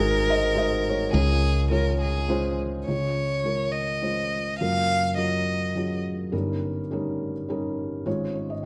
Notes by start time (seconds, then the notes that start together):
Already playing: G#1 G#2 G#3 D#4 F#4 A#4 C5 D#5 F#5
0.00 G#4
0.30 C5 D#5
0.54 G#3 D#4 F#4 C5 D#5
0.59 C5
0.89 A#4 C#5
1.12 C#2 C#3 G#3 C#4 F4 G#4 A#4
1.16 A#4 C#5
1.70 G#3 C#4 F4 A#4 C#5
2.01 G#4
2.28 G#3 C#4 F4 C5
2.86 C#2 C#3 G#3 C#4 F4 C#5
3.44 G#3 C#4 F4 A#4
3.72 D#5
4.02 G#3 C#4 F4 C5
4.59 F#1 F#2 F#3 C#4 F4 A#4 F5
5.17 F#3 C#4 F4 A#4 D#5
5.75 F#3 C#4 F4 G#4
6.32 G1 G2 G3 C#4 D#4 A#4
6.91 G3 C#4 D#4 A#4
7.48 G3 C#4 D#4 A#4
8.06 G#1 G#2 G#3 C#4 F4 C#5
8.35 C#5
8.50 D#5